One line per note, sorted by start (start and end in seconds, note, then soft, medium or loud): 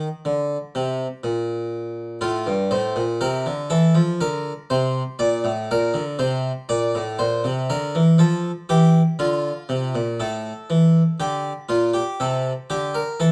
0.25 0.56 D3 medium
0.75 1.05 C3 medium
1.24 2.19 A#2 medium
2.21 2.45 A2 medium
2.21 2.52 F4 medium
2.46 2.70 G2 medium
2.71 2.95 A2 medium
2.71 3.02 C5 medium
2.96 3.20 A#2 medium
3.21 3.45 C3 medium
3.21 3.52 A#4 medium
3.46 3.70 D3 medium
3.70 3.94 E3 medium
3.70 4.01 A4 medium
3.95 4.19 F3 medium
4.21 4.51 D3 medium
4.21 4.51 A#4 medium
4.70 5.01 C3 medium
4.70 5.01 C5 medium
5.19 5.43 A#2 medium
5.19 5.50 D5 medium
5.44 5.68 A2 medium
5.71 5.94 A#2 medium
5.71 6.01 A#4 medium
5.94 6.18 D3 medium
6.19 6.50 C3 medium
6.19 6.50 C5 medium
6.69 6.93 A#2 medium
6.69 7.00 D5 medium
6.95 7.19 A2 medium
7.19 7.43 A#2 medium
7.19 7.50 C5 medium
7.44 7.68 C3 medium
7.70 7.94 D3 medium
7.70 8.00 A#4 medium
7.95 8.19 E3 medium
8.18 8.49 F3 medium
8.18 8.50 A4 medium
8.69 9.00 E3 medium
8.69 9.00 G4 medium
9.19 9.50 D3 medium
9.19 10.17 F4 medium
9.69 9.94 C3 medium
9.95 10.19 A#2 medium
10.20 10.51 A2 medium
10.20 11.17 A4 medium
10.70 11.01 E3 medium
11.20 11.51 D3 medium
11.20 11.51 G4 soft
11.69 12.01 A#2 medium
11.69 11.94 F4 medium
11.94 12.19 G4 medium
12.20 12.51 C3 medium
12.20 12.51 A4 soft
12.70 13.01 D3 medium
12.70 12.94 G4 medium
12.94 13.19 A#4 medium
13.20 13.32 E3 medium
13.20 13.32 A4 medium